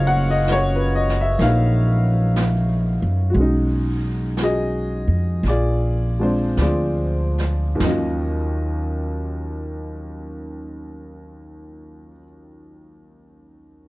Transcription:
Already playing: F#1 F#3 A#3 C#4 F4 F#4 G#4 A#4 B4 C#5 D#5 F5
0.07 F#5
0.30 D#5
0.48 snare, hi-hat pedal
0.52 C#5
0.76 B4
0.95 D#5
1.09 snare
1.21 E5
1.38 A#1 A#3 D#4 F5, brush sweep, snare
2.36 snare, hi-hat pedal
3.02 F#2
3.30 G#3 F#4
3.34 B1 C#4, brush sweep
3.41 D#4
4.37 snare, hi-hat pedal
4.42 F#4 G#4 D#5
5.08 F2
5.43 A#1, brush sweep, snare
5.48 F4 G#4 D5
6.19 F3 G#3 C4 D4 C5
6.57 D2 G#4 D5, snare, hi-hat pedal
6.62 F4
7.38 snare
7.75 D#2 D#3
7.80 D#2 F#3 D#5, snare, floor tom
7.84 C#4 F4

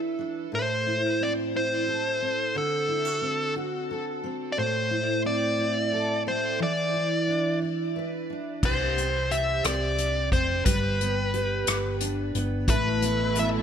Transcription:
Already playing: E3 D4 E4 B4
0.19 D4
0.52 A2 C5
0.86 E4
1.21 C4 D5
1.54 E4 C5
1.88 A4
2.22 C4
2.55 D3 A4
2.88 E4
3.05 F#4
3.21 C4
3.56 F#4
3.91 A4
4.24 C4
4.52 D5
4.57 A2 C5
4.91 E4
5.25 C4 D5
5.58 E4
5.92 A4
6.27 C4 C5
6.59 E3 D5
6.94 E4
7.27 D4
7.62 E4
7.96 B4
8.30 D4
8.63 C2 C3 G4 C5, kick, crash
8.97 C4, closed hi-hat
9.31 G4 E5, closed hi-hat
9.64 C2 C4 D5, cross-stick, closed hi-hat
9.98 D4, closed hi-hat
10.32 F1 C4 C5, kick, closed hi-hat
10.65 G1 G3 G4 B4, kick, closed hi-hat
11.01 B3, closed hi-hat
11.34 G4, closed hi-hat
11.67 G1 B3, cross-stick, closed hi-hat
12.00 D4, closed hi-hat
12.35 G1 B3, closed hi-hat
12.68 A1 B2 E3 A3 E4 A4 B4, kick, closed hi-hat
13.02 B3, closed hi-hat
13.35 A4, closed hi-hat
13.39 E5

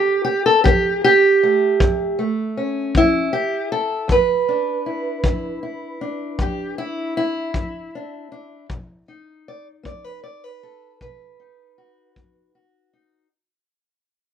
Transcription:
Already playing: A2 G4
0.25 G4
0.46 A4
0.64 E3 G4, kick
1.04 G4
1.43 A3
1.80 A2, kick
2.19 A3
2.57 C#4
2.95 E3 E4, kick
3.33 G4
3.72 A4
4.08 E2 B4, kick
4.49 D4
4.86 E4
5.24 E3 E4, kick
5.63 E4
6.01 D4
6.39 E2 G4, kick
6.78 E4
7.17 E4
7.54 E3, kick
7.95 D4
8.32 D4
8.69 B2, kick
9.08 D#4
9.48 D5
9.83 B3 D5, kick
10.04 B4
10.24 D5
10.44 B4
10.63 A4
11.01 B2 B4, kick
11.40 D#4
11.78 F#4
12.16 B3, kick
12.55 F#4
12.93 D#4

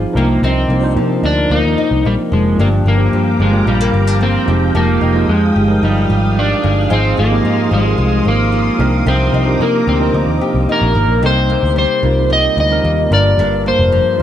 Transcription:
Already playing: F3 C4 D#4 F4 G#4 C5 G#5
0.13 C2 C3 F3 A#3 D4 D#4 A#4
0.42 C2 C3 C4 D#4
0.68 C2 A#3
0.81 F3 D4 D#4 C5
0.96 C3 F3
1.23 D2 D4 D#4
1.35 F3 D#4 A#4 D5
1.50 D2 A#3 D#4
1.64 D#2
1.78 D#4
1.91 C2
2.05 A#1 G3 A#3
2.32 F1 F3 G#3
2.57 G1 G2 F3 A#3 D4 G4 F5 G5 A#5 D6
2.85 G1 A#3
2.97 F3 A#3 D4 G4
3.13 G2 F3
3.40 G1 G#3 D4
3.51 F3 A#3 D4 G4
3.67 A#1 G3 G#3
3.81 A#3
3.93 G1 C4
4.07 D4
4.21 A#3 C4
4.46 F1 F3 G#3 D#4 G4 F5 D#6
4.75 F1 F3 A#3 G4
5.01 F1 D#4
5.13 F3 G#3 D#4 F4
5.28 F2 G#3
5.56 G1 G4
5.68 F3 G3 D#4 A#4
5.82 G1 G3 D#4
6.09 G#1 G4
6.39 D4
6.63 G1 G#3
6.90 G#1 F3 G#3 C4 D#4 G#4 C5 C6 D#6
7.17 G#1 A#3 F4
7.30 F3 C4 D#4 G4
7.45 G#2 D#4
7.71 G#1 G#3 C5
7.84 F3 C4 D#4 A#4
7.98 C2 F4
8.25 G#1 A#3 C5
8.52 F4
8.78 C2 C3 F3 D4 D#4 A#4 D6
9.06 C2 C3 C4 G4
9.33 C2 D#4
9.45 F3 D4 D#4 G4
9.60 C3 A#3
9.87 D2 C4 G4
10.00 F3 D4 D#4 A#4
10.14 D2 D#4
10.27 D#2
10.41 G4
10.54 C2
10.69 D#4 A#4
10.82 A#1
10.95 G#1 A#3
11.09 A#1
11.21 C2 C3 G3 C4 D#4 A4
11.26 C5
11.30 A#4
11.50 A#3
11.63 D2
11.76 G3 C5
12.03 C2 G3 A#3 C4 D#4 F4
12.30 G3 D#5
12.57 D2 D#4 D#5
12.69 G3 C4 D#4 A#4
12.84 D#2 A#3
13.10 G1 G2 G3 D4 F4 A#4 D5
13.38 G1 G2 D4
13.66 A#3 C5
13.79 F1
13.92 F3
14.18 G3 D4

